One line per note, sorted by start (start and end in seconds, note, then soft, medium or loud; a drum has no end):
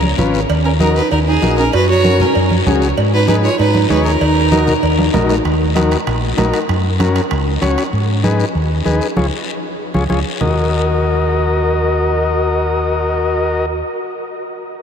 0.00 0.12 C#2 medium
0.00 high conga medium
0.18 0.43 G#1 medium
0.18 0.40 C#4 medium
0.18 0.40 F4 medium
0.18 0.41 B4 medium
0.18 high conga medium
0.18 low conga medium
0.18 short guiro medium
0.34 short guiro medium
0.49 0.99 D#2 medium
0.49 cowbell loud
0.49 long guiro medium
0.65 0.72 C#4 medium
0.65 0.72 A#4 medium
0.80 1.02 D#4 medium
0.80 0.95 D#4 medium
0.80 1.02 F#4 medium
0.80 0.94 A#4 medium
0.80 1.02 A#4 medium
0.80 high conga medium
0.80 short guiro medium
0.96 1.11 D#4 medium
0.96 1.10 B4 medium
0.96 short guiro medium
1.11 1.36 D#2 medium
1.11 1.19 D#4 medium
1.11 1.19 A#4 medium
1.11 cowbell medium
1.11 long guiro medium
1.27 1.56 D#4 medium
1.27 1.56 G#4 medium
1.42 1.67 A#1 medium
1.42 1.64 D#4 medium
1.42 1.64 F#4 medium
1.42 1.64 A#4 medium
1.42 high conga medium
1.42 short guiro medium
1.58 1.73 C#4 medium
1.58 1.72 A#4 medium
1.58 short guiro medium
1.73 2.23 F#2 loud
1.73 1.88 F#4 medium
1.73 1.88 B4 loud
1.73 cowbell loud
1.73 long guiro medium
1.89 2.22 F#4 medium
1.89 2.23 C#5 loud
2.04 2.26 C#4 medium
2.04 2.26 F#4 medium
2.04 2.26 A#4 medium
2.04 high conga medium
2.04 short guiro medium
2.20 2.51 C#4 medium
2.20 2.52 A#4 medium
2.20 low conga medium
2.20 short guiro medium
2.35 2.60 F#2 medium
2.35 cowbell medium
2.35 long guiro medium
2.51 high conga medium
2.66 2.91 C#2 medium
2.66 2.88 C#4 medium
2.66 2.88 F#4 medium
2.66 2.88 G#4 medium
2.66 high conga medium
2.66 low conga medium
2.66 short guiro medium
2.82 short guiro medium
2.97 3.47 G#2 loud
2.97 cowbell loud
2.97 long guiro medium
3.13 3.27 D#4 medium
3.13 3.28 B4 loud
3.28 3.50 D#4 medium
3.28 3.35 D#4 medium
3.28 3.50 G#4 medium
3.28 3.50 B4 medium
3.28 3.36 B4 loud
3.28 high conga medium
3.28 short guiro medium
3.43 3.58 F4 medium
3.43 3.58 C#5 loud
3.43 short guiro medium
3.59 3.84 G#2 medium
3.59 3.88 D#4 medium
3.59 3.88 B4 medium
3.59 cowbell medium
3.59 long guiro medium
3.74 high conga medium
3.89 4.15 D#2 medium
3.89 4.04 D#4 medium
3.89 4.12 D#4 medium
3.89 4.12 G#4 medium
3.89 4.04 B4 medium
3.89 4.12 C#5 medium
3.89 high conga medium
3.89 low timbale medium
3.89 short guiro medium
4.05 5.10 D#4 medium
4.05 5.10 A#4 medium
4.05 short guiro medium
4.21 4.71 D#2 loud
4.21 cowbell loud
4.21 long guiro medium
4.52 4.74 D#4 medium
4.52 4.74 F#4 medium
4.52 4.74 A#4 loud
4.52 high conga medium
4.52 short guiro medium
4.67 low conga medium
4.67 short guiro medium
4.83 5.08 D#2 medium
4.83 cowbell medium
4.83 long guiro medium
4.98 high conga medium
4.98 high timbale medium
5.13 5.39 A#1 medium
5.13 5.35 D#4 medium
5.13 5.36 F#4 medium
5.13 5.36 A#4 medium
5.13 high conga medium
5.13 low conga medium
5.13 low timbale medium
5.13 short guiro medium
5.29 low timbale medium
5.29 short guiro medium
5.45 5.94 D#2 medium
5.45 high timbale medium
5.45 long guiro medium
5.75 5.97 D#4 medium
5.75 5.97 F#4 medium
5.75 5.98 A#4 medium
5.75 high conga medium
5.75 high timbale medium
5.75 short guiro medium
5.91 high timbale medium
5.91 short guiro medium
6.07 6.32 A#1 medium
6.07 high timbale medium
6.07 long guiro medium
6.37 6.50 A#1 medium
6.37 6.59 D#4 medium
6.37 6.59 F#4 medium
6.37 6.60 A#4 medium
6.37 high conga medium
6.37 high timbale medium
6.37 low timbale medium
6.37 short guiro medium
6.54 high timbale medium
6.54 short guiro medium
6.69 7.18 F#2 medium
6.69 high timbale medium
6.69 long guiro medium
6.99 7.21 C#4 medium
6.99 7.21 F#4 medium
6.99 7.22 A#4 medium
6.99 high conga medium
6.99 high timbale medium
6.99 short guiro medium
7.16 high timbale medium
7.16 short guiro medium
7.31 7.56 C#2 loud
7.31 high timbale medium
7.31 long guiro medium
7.61 7.74 C#2 medium
7.61 7.83 C#4 medium
7.61 7.83 F#4 medium
7.61 7.83 C#5 medium
7.61 high conga medium
7.61 high timbale medium
7.61 short guiro medium
7.78 high timbale medium
7.78 short guiro medium
7.93 8.42 G#2 medium
7.93 long guiro medium
8.23 8.45 D#4 medium
8.23 8.45 G#4 medium
8.23 8.46 B4 medium
8.23 high conga medium
8.23 short guiro medium
8.40 short guiro medium
8.55 8.80 D#2 medium
8.55 long guiro medium
8.85 8.98 D#2 medium
8.85 9.07 D#4 medium
8.85 9.07 G#4 medium
8.85 9.08 B4 medium
8.85 high conga medium
8.85 short guiro medium
9.01 short guiro medium
9.16 9.28 C#2 medium
9.16 9.27 F4 medium
9.16 9.27 G#4 medium
9.16 9.27 C#5 medium
9.16 high conga loud
9.16 long guiro medium
9.94 10.06 C#2 medium
9.94 10.04 F4 medium
9.94 10.04 G#4 medium
9.94 10.04 C#5 medium
9.94 high conga medium
9.94 long guiro medium
10.10 10.22 C#2 medium
10.10 10.20 F4 medium
10.10 10.20 G#4 medium
10.10 10.20 C#5 medium
10.10 high conga medium
10.10 long guiro medium
10.41 13.81 D#2 medium
10.41 13.66 F#4 medium
10.41 13.66 A#4 medium
10.41 13.66 D#5 medium
10.41 low conga medium
10.41 long guiro medium